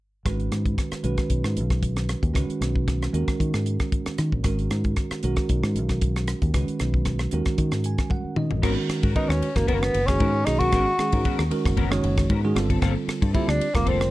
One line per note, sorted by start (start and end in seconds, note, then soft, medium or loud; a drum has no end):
0.25 0.48 G#1 medium
0.25 1.02 D#3 medium
0.25 1.02 G#3 soft
0.25 1.03 C#4 soft
0.25 1.03 F#4 soft
0.25 1.04 B4 medium
0.25 kick medium
0.25 cross-stick medium
0.25 closed hi-hat medium
0.40 closed hi-hat soft
0.52 0.74 G#2 medium
0.52 cross-stick medium
0.52 closed hi-hat soft
0.66 kick medium
0.66 closed hi-hat soft
0.78 kick medium
0.78 cross-stick medium
0.78 closed hi-hat medium
0.91 muted fingered electric bass stroke soft
0.91 cross-stick medium
0.91 closed hi-hat soft
1.03 1.16 B1 medium
1.03 2.32 D#3 medium
1.03 2.32 G#3 soft
1.03 2.32 C#4 medium
1.03 2.33 F#4 soft
1.03 2.33 B4 medium
1.03 closed hi-hat soft
1.18 kick medium
1.18 cross-stick medium
1.18 closed hi-hat soft
1.30 1.42 B1 medium
1.30 kick medium
1.30 closed hi-hat medium
1.44 1.58 G#2 medium
1.44 cross-stick medium
1.56 2.14 B1 medium
1.56 closed hi-hat soft
1.70 kick medium
1.70 cross-stick medium
1.70 closed hi-hat soft
1.83 kick medium
1.83 closed hi-hat medium
1.96 cross-stick medium
1.96 closed hi-hat soft
2.09 cross-stick medium
2.09 closed hi-hat medium
2.23 2.33 D#2 medium
2.23 kick medium
2.23 closed hi-hat soft
2.34 2.47 C#2 medium
2.34 3.11 D#3 medium
2.34 3.12 G#3 soft
2.34 3.12 C#4 medium
2.34 3.13 F#4 medium
2.34 3.14 B4 medium
2.34 kick medium
2.34 cross-stick medium
2.34 closed hi-hat medium
2.50 closed hi-hat soft
2.61 3.07 B1 medium
2.61 cross-stick medium
2.61 closed hi-hat soft
2.75 kick medium
2.88 kick medium
2.88 cross-stick medium
2.88 closed hi-hat medium
3.02 cross-stick medium
3.02 closed hi-hat soft
3.13 3.26 D#2 medium
3.13 4.42 D#3 medium
3.13 4.42 G#3 medium
3.13 4.42 C#4 soft
3.13 4.42 F#4 medium
3.13 4.42 A#4 medium
3.13 closed hi-hat soft
3.28 kick medium
3.28 cross-stick medium
3.28 closed hi-hat soft
3.40 3.52 D#3 medium
3.40 kick medium
3.40 closed hi-hat medium
3.54 3.77 G#2 medium
3.54 cross-stick medium
3.54 closed hi-hat soft
3.66 closed hi-hat soft
3.80 kick medium
3.80 cross-stick medium
3.80 closed hi-hat soft
3.92 kick medium
3.92 closed hi-hat medium
4.06 muted fingered electric bass stroke soft
4.06 cross-stick medium
4.06 closed hi-hat soft
4.18 4.31 D#3 medium
4.18 cross-stick medium
4.18 closed hi-hat soft
4.32 4.43 A#1 medium
4.32 kick medium
4.44 4.67 G#1 medium
4.44 5.22 D#3 medium
4.44 5.22 G#3 medium
4.44 5.23 C#4 soft
4.44 5.23 F#4 medium
4.44 5.23 A#4 medium
4.44 kick medium
4.44 cross-stick medium
4.44 closed hi-hat medium
4.59 closed hi-hat soft
4.71 4.94 G#2 medium
4.71 cross-stick medium
4.71 closed hi-hat soft
4.84 kick medium
4.84 closed hi-hat soft
4.96 kick medium
4.96 cross-stick medium
4.96 closed hi-hat medium
5.11 muted fingered electric bass stroke soft
5.11 cross-stick medium
5.11 closed hi-hat soft
5.23 5.36 B1 medium
5.23 6.52 D#3 medium
5.23 6.52 G#3 medium
5.23 6.52 C#4 medium
5.23 6.52 F#4 medium
5.23 6.52 A#4 medium
5.23 closed hi-hat soft
5.36 kick medium
5.36 cross-stick medium
5.36 closed hi-hat soft
5.49 5.61 B1 medium
5.49 kick medium
5.49 closed hi-hat medium
5.63 5.76 G#2 medium
5.63 cross-stick medium
5.75 6.33 B1 medium
5.75 closed hi-hat medium
5.89 kick medium
5.89 cross-stick medium
5.89 closed hi-hat soft
6.01 kick medium
6.01 closed hi-hat medium
6.16 cross-stick medium
6.16 closed hi-hat soft
6.28 cross-stick medium
6.28 closed hi-hat medium
6.42 6.53 D#2 medium
6.42 kick medium
6.42 closed hi-hat soft
6.54 6.66 C#2 medium
6.54 7.31 D#3 medium
6.54 7.31 G#3 medium
6.54 7.32 C#4 medium
6.54 7.32 F#4 medium
6.54 7.33 B4 medium
6.54 kick medium
6.54 cross-stick medium
6.54 closed hi-hat medium
6.68 closed hi-hat soft
6.79 7.26 B1 medium
6.79 cross-stick medium
6.79 closed hi-hat soft
6.94 kick medium
7.05 kick medium
7.05 cross-stick medium
7.05 closed hi-hat medium
7.19 cross-stick medium
7.19 closed hi-hat soft
7.31 7.45 D#2 medium
7.31 8.61 D#3 medium
7.31 8.61 G#3 soft
7.31 8.61 C#4 soft
7.31 8.61 F#4 medium
7.31 8.62 A#4 medium
7.31 closed hi-hat soft
7.45 kick medium
7.45 cross-stick medium
7.45 closed hi-hat soft
7.58 7.71 D#3 medium
7.58 kick medium
7.58 closed hi-hat medium
7.72 7.95 G#2 medium
7.72 cross-stick medium
7.72 closed hi-hat soft
7.84 8.10 G#5 soft
7.84 closed hi-hat soft
7.98 kick medium
7.98 cross-stick medium
7.98 closed hi-hat soft
8.10 8.35 F#5 medium
8.10 kick medium
8.10 high tom soft
8.24 muted fingered electric bass stroke soft
8.36 8.49 D#3 medium
8.36 8.62 D#5 medium
8.36 mid tom medium
8.51 8.62 A1 medium
8.51 floor tom medium
8.62 8.75 G#1 loud
8.62 9.06 D#3 medium
8.62 9.06 G#3 medium
8.62 8.77 B3 medium
8.62 8.76 C#4 medium
8.62 9.06 C#4 medium
8.62 8.75 F#4 medium
8.62 9.06 F#4 medium
8.62 8.75 A#4 medium
8.62 9.06 A#4 medium
8.62 kick medium
8.62 cross-stick medium
8.62 crash medium
8.76 muted clean electric guitar stroke soft
8.89 muted fingered electric bass stroke soft
8.89 muted clean electric guitar stroke soft
8.89 cross-stick medium
8.89 ride soft
9.03 9.14 G#2 medium
9.03 9.14 C#4 soft
9.03 9.15 F#4 soft
9.03 9.15 A#4 soft
9.03 kick medium
9.03 ride soft
9.15 9.48 D#3 medium
9.15 9.48 G#3 medium
9.15 9.32 B3 medium
9.15 9.32 C#4 medium
9.15 9.48 C#4 medium
9.15 9.30 D#4 medium
9.15 9.32 F#4 medium
9.15 9.48 F#4 medium
9.15 9.32 A#4 medium
9.15 9.48 B4 medium
9.15 muted fingered electric bass stroke soft
9.15 kick loud
9.15 ride soft
9.29 9.40 D#2 medium
9.29 9.58 C#4 medium
9.29 cross-stick medium
9.41 muted clean electric guitar stroke soft
9.41 muted fingered electric bass stroke soft
9.41 ride medium
9.55 9.89 F#1 medium
9.55 9.97 D#3 medium
9.55 9.97 G#3 medium
9.55 9.67 A#3 medium
9.55 9.97 C#4 medium
9.55 9.97 F#4 medium
9.55 9.98 A#4 medium
9.55 muted clean electric guitar stroke soft
9.55 kick medium
9.55 cross-stick medium
9.55 ride soft
9.67 9.82 B3 medium
9.67 9.76 B3 medium
9.67 9.80 C#4 medium
9.67 9.80 F#4 medium
9.67 9.79 A#4 medium
9.67 kick medium
9.67 ride medium
9.74 9.83 A#3 medium
9.80 10.08 B3 medium
9.80 muted clean electric guitar stroke soft
9.80 cross-stick medium
9.93 10.17 F#1 medium
9.93 muted clean electric guitar stroke soft
9.93 ride medium
10.06 10.40 D#3 medium
10.06 10.40 G#3 medium
10.06 10.46 C#4 medium
10.06 10.40 C#4 medium
10.06 10.40 F#4 medium
10.06 10.40 G#4 medium
10.06 kick medium
10.06 cross-stick medium
10.06 ride medium
10.19 10.43 G#2 medium
10.19 10.34 B3 medium
10.19 10.34 C#4 medium
10.19 10.33 F#4 medium
10.19 10.33 A#4 medium
10.19 kick loud
10.19 ride medium
10.34 muted clean electric guitar stroke soft
10.45 10.69 B1 medium
10.45 10.90 D#3 medium
10.45 10.90 G#3 medium
10.45 10.90 C#4 medium
10.45 10.60 D#4 medium
10.45 10.90 F#4 medium
10.45 10.90 G#4 medium
10.45 muted clean electric guitar stroke soft
10.45 cross-stick medium
10.45 ride medium
10.58 10.72 C#4 soft
10.58 11.38 F#4 medium
10.58 10.72 F#4 soft
10.58 10.72 A#4 soft
10.58 kick medium
10.58 ride medium
10.72 10.85 G#1 loud
10.72 10.87 B3 medium
10.72 10.87 C#4 medium
10.72 10.87 F#4 medium
10.72 10.86 A#4 medium
10.72 kick medium
10.72 cross-stick medium
10.72 ride medium
10.88 muted clean electric guitar stroke soft
10.98 11.42 D#3 medium
10.98 11.42 G#3 medium
10.98 11.42 C#4 medium
10.98 11.42 F#4 medium
10.98 11.42 G#4 medium
10.98 muted fingered electric bass stroke soft
10.98 cross-stick medium
10.98 ride soft
11.12 11.23 G#2 medium
11.12 11.24 C#4 soft
11.12 11.24 F#4 soft
11.12 11.25 A#4 soft
11.12 kick medium
11.12 ride medium
11.25 11.41 B3 medium
11.25 11.41 C#4 medium
11.25 11.42 F#4 medium
11.25 11.42 A#4 medium
11.25 kick medium
11.25 ride medium
11.39 11.50 D#2 medium
11.39 cross-stick medium
11.51 11.83 D#3 medium
11.51 11.83 G#3 medium
11.51 11.83 C#4 medium
11.51 11.83 F#4 medium
11.51 11.83 A#4 medium
11.51 muted clean electric guitar stroke soft
11.51 muted fingered electric bass stroke soft
11.51 ride medium
11.65 11.99 F#1 medium
11.65 muted clean electric guitar stroke soft
11.65 kick medium
11.65 cross-stick medium
11.65 ride soft
11.77 11.91 B3 medium
11.77 11.91 C#4 medium
11.77 11.91 F#4 medium
11.77 11.90 A#4 medium
11.77 kick medium
11.77 ride medium
11.91 12.32 D#3 loud
11.91 12.33 G#3 medium
11.91 12.33 C#4 medium
11.91 12.33 F#4 medium
11.91 12.33 C#5 loud
11.91 muted clean electric guitar stroke soft
11.91 cross-stick medium
12.02 12.26 F#1 medium
12.02 muted clean electric guitar stroke soft
12.02 ride medium
12.17 kick medium
12.17 cross-stick medium
12.17 ride soft
12.30 12.52 G#2 medium
12.30 12.44 B3 medium
12.30 12.42 C#4 medium
12.30 12.42 F#4 medium
12.30 12.42 A#4 medium
12.30 kick loud
12.30 ride medium
12.43 12.56 D#3 medium
12.43 12.56 G#3 medium
12.43 12.56 C#4 medium
12.43 12.56 F#4 medium
12.43 12.56 G#4 medium
12.43 muted clean electric guitar stroke soft
12.55 12.78 G1 medium
12.55 13.19 D3 medium
12.55 13.19 G3 medium
12.55 13.20 C4 medium
12.55 13.20 F4 medium
12.55 13.20 A4 medium
12.55 muted clean electric guitar stroke soft
12.55 cross-stick medium
12.55 ride medium
12.70 12.80 C4 medium
12.70 12.81 F4 medium
12.70 12.81 A4 medium
12.70 kick medium
12.70 ride soft
12.81 12.94 G1 medium
12.81 12.96 A#3 medium
12.81 12.95 C4 medium
12.81 12.95 F4 loud
12.81 12.95 A4 medium
12.81 kick medium
12.81 cross-stick medium
12.81 ride medium
12.96 muted clean electric guitar stroke soft
13.07 muted clean electric guitar stroke soft
13.07 muted fingered electric bass stroke soft
13.07 cross-stick medium
13.07 ride soft
13.21 13.33 G2 medium
13.21 13.32 C4 soft
13.21 13.33 F4 soft
13.21 13.33 A4 soft
13.21 kick medium
13.21 ride medium
13.33 13.66 D3 medium
13.33 13.66 G3 medium
13.33 13.50 A#3 medium
13.33 13.50 C4 medium
13.33 13.66 C4 medium
13.33 13.50 E4 medium
13.33 13.51 F4 medium
13.33 13.66 F4 medium
13.33 13.66 G4 medium
13.33 13.51 A4 medium
13.33 muted fingered electric bass stroke soft
13.33 kick medium
13.33 ride medium
13.48 13.59 D2 medium
13.48 13.76 D4 medium
13.48 cross-stick medium
13.60 muted clean electric guitar stroke soft
13.60 muted fingered electric bass stroke soft
13.60 ride medium
13.74 14.08 F1 medium
13.74 14.11 D3 medium
13.74 14.11 G3 medium
13.74 13.90 A#3 medium
13.74 14.11 C4 medium
13.74 14.11 F4 medium
13.74 14.11 A#4 medium
13.74 muted clean electric guitar stroke soft
13.74 kick medium
13.74 cross-stick medium
13.74 ride soft
13.86 14.00 A#3 medium
13.86 13.99 C4 medium
13.86 14.11 C4 medium
13.86 13.99 F4 medium
13.86 13.99 A4 medium
13.86 kick medium
13.86 ride medium
14.00 muted clean electric guitar stroke soft
14.00 cross-stick medium